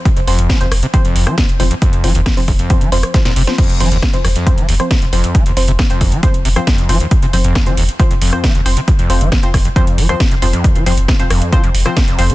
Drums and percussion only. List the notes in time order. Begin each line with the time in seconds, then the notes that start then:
0.05 kick, closed hi-hat
0.17 closed hi-hat
0.27 open hi-hat
0.39 closed hi-hat
0.50 kick, cross-stick, snare, closed hi-hat
0.61 closed hi-hat
0.72 cross-stick, open hi-hat
0.83 closed hi-hat
0.94 kick, closed hi-hat
1.05 closed hi-hat
1.16 open hi-hat
1.27 cross-stick, closed hi-hat
1.38 kick, snare, closed hi-hat
1.49 closed hi-hat
1.60 open hi-hat
1.71 closed hi-hat
1.82 kick, closed hi-hat
1.93 closed hi-hat
2.04 open hi-hat
2.15 closed hi-hat
2.26 kick, cross-stick, snare, closed hi-hat
2.37 open hi-hat
2.48 kick, open hi-hat
2.59 closed hi-hat
2.70 kick, closed hi-hat
2.81 closed hi-hat
2.92 open hi-hat
3.03 cross-stick, closed hi-hat
3.14 kick, snare, closed hi-hat
3.25 snare, closed hi-hat
3.36 open hi-hat
3.47 snare, closed hi-hat
3.58 kick, closed hi-hat, crash
3.69 closed hi-hat
3.80 open hi-hat
3.92 closed hi-hat
4.02 kick, cross-stick, snare, closed hi-hat
4.14 closed hi-hat
4.25 cross-stick, open hi-hat
4.36 closed hi-hat
4.47 kick, closed hi-hat
4.58 closed hi-hat
4.69 open hi-hat
4.80 cross-stick, closed hi-hat
4.91 kick, snare, closed hi-hat
5.02 closed hi-hat
5.13 open hi-hat
5.24 closed hi-hat
5.35 kick, closed hi-hat
5.46 closed hi-hat
5.57 open hi-hat
5.68 closed hi-hat
5.79 kick, cross-stick, snare, closed hi-hat
5.90 closed hi-hat
6.01 kick, open hi-hat
6.12 closed hi-hat
6.23 kick, closed hi-hat
6.34 closed hi-hat
6.45 open hi-hat
6.56 cross-stick, closed hi-hat
6.67 kick, snare, closed hi-hat
6.78 closed hi-hat
6.89 open hi-hat
7.00 closed hi-hat
7.11 kick, closed hi-hat
7.22 closed hi-hat
7.33 open hi-hat
7.44 closed hi-hat
7.55 kick, cross-stick, snare, closed hi-hat
7.66 closed hi-hat
7.77 open hi-hat
7.89 closed hi-hat
8.00 kick, closed hi-hat
8.11 closed hi-hat
8.22 open hi-hat
8.33 cross-stick, closed hi-hat
8.44 kick, snare, closed hi-hat
8.55 closed hi-hat
8.66 open hi-hat
8.77 closed hi-hat
8.88 kick, closed hi-hat
8.99 closed hi-hat
9.10 open hi-hat
9.21 closed hi-hat
9.32 kick, cross-stick, snare, closed hi-hat
9.43 closed hi-hat
9.54 kick, cross-stick, open hi-hat
9.65 closed hi-hat
9.76 kick, closed hi-hat
9.87 closed hi-hat
9.98 open hi-hat
10.09 cross-stick, closed hi-hat
10.20 kick, snare, closed hi-hat
10.31 closed hi-hat
10.42 open hi-hat
10.53 closed hi-hat
10.64 kick, closed hi-hat
10.75 closed hi-hat
10.86 open hi-hat
10.97 closed hi-hat
11.08 kick, cross-stick, snare, closed hi-hat
11.19 closed hi-hat
11.30 cross-stick, open hi-hat
11.42 closed hi-hat
11.53 kick, closed hi-hat
11.64 closed hi-hat
11.75 open hi-hat
11.86 cross-stick, closed hi-hat
11.97 kick, snare, closed hi-hat
12.08 closed hi-hat
12.19 open hi-hat
12.30 closed hi-hat